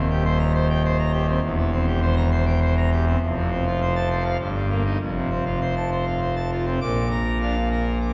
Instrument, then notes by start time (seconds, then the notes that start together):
pipe organ
Already playing: D#1 D#2
0.10 G4
0.25 C5
0.39 A#5
0.55 C5
0.70 G5
0.84 C5
0.99 A#5
1.13 G4
1.28 C4
1.42 E1 E2
1.58 E3
1.72 C4
1.86 G4
2.02 C5
2.16 A#5
2.31 C5
2.46 G5
2.61 C5
2.77 A#5
2.92 G4
3.07 C4
3.22 F1 F2
3.37 C3
3.52 C4
3.67 F4
3.81 C5
3.96 A5
4.11 C5
4.25 F5
4.40 G1 G2
4.55 G3
4.70 A#3
4.85 D#4
5.00 F1 F2
5.15 C3
5.31 C4
5.46 F4
5.61 C5
5.76 A5
5.92 C5
6.06 F5
6.21 C5
6.36 A5
6.51 F4
6.66 C4
6.81 A#1 A#2 D6
7.11 A#5
7.42 D4 F5
7.71 A#4
8.01 D6